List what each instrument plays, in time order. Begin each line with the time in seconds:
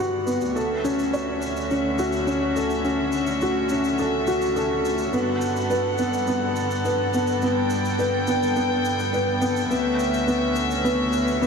Already playing: string section G2 D3 G3 B3 F#5, felt piano B3 G4
0.00 felt piano F#4
0.27 felt piano B3, shaker
0.41 shaker
0.56 string section D2 D3 C#4 F#4 E5, felt piano A4, shaker
0.84 felt piano C#4, shaker
0.99 shaker
1.13 felt piano C#5, shaker
1.42 shaker
1.57 shaker
1.71 felt piano C#4, shaker
1.99 felt piano F#4, shaker
2.13 shaker
2.27 felt piano C#4, shaker
2.56 felt piano A4, shaker
2.70 shaker
2.84 felt piano C#4, shaker
3.12 shaker
3.27 shaker
3.41 felt piano F#4, shaker
3.69 felt piano C#4, shaker
3.84 shaker
3.98 felt piano A4, shaker
4.27 felt piano F#4, shaker
4.42 shaker
4.56 felt piano A4, shaker
4.85 shaker
4.98 shaker
5.13 string section G2 B3 A4 F#5, felt piano B3, shaker
5.41 shaker
5.56 shaker
5.70 felt piano B4, shaker
5.98 felt piano B3, shaker
6.14 shaker
6.27 felt piano B3, shaker
6.56 shaker
6.71 shaker
6.85 felt piano B4, shaker
7.14 felt piano B3, shaker
7.27 shaker
7.42 felt piano B3, string section G5, shaker
7.70 shaker
7.85 shaker
7.99 felt piano B4, shaker
8.27 felt piano B3, shaker
8.43 shaker
8.56 felt piano B3, shaker
8.85 shaker
8.99 shaker
9.13 felt piano B4, shaker
9.41 felt piano B3, shaker
9.56 shaker
9.69 string section D2 C#4 F#4 E5, felt piano B3, shaker
10.00 shaker
10.14 shaker
10.27 felt piano B3, shaker
10.56 shaker
10.71 shaker
10.84 felt piano B3, shaker
11.13 shaker
11.28 shaker
11.42 felt piano B3, shaker